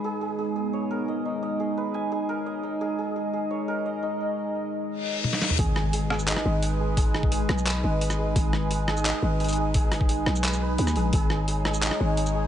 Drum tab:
HH |--------------------------------|--------------------------------|--------------------------------|--------------------------------|
SH |--------------------------------|--------------------------------|--------------------------------|--------------------------------|
CP |--------------------------------|--------------------------------|--------------------------------|--------------------------------|
SD |--------------------------------|--------------------------------|--------------------------------|--------------------------o-o---|
T1 |--------------------------------|--------------------------------|--------------------------------|------------------------o-------|
T2 |--------------------------------|--------------------------------|--------------------------------|------------------------------o-|
BD |--------------------------------|--------------------------------|--------------------------------|--------------------------------|

HH |x-------x-------x-------x-------|x-------x-------x-------x-------|x-------x-------x-------xxxx----|x---x---x-------x-------x---x---|
SH |--------------x-----------------|--------------x-----------x-----|--------------x-----------x-----|--------------x---x-------x-----|
CP |----------------x---------------|----------------x---------------|----------------x---------------|----------------x---------------|
SD |----r-------r-----r-------------|----r-------r-------------r-----|----r-------r-------------------|----r-------r-------------r-----|
T1 |--------------------------------|--------------------------------|--------------------------------|--------------------------------|
T2 |--------------------------------|--------------------------------|--------------------------------|--------------------------------|
BD |o-------------------------------|o-----o-------------------------|o-------------------------------|o-----o-------------------------|

HH |x-------x-------x-------x-------|
SH |--------------x-----------x-----|
CP |----------------x---------------|
SD |----r-------r-----r-------------|
T1 |--------------------------------|
T2 |--------------------------------|
BD |o-------------------------------|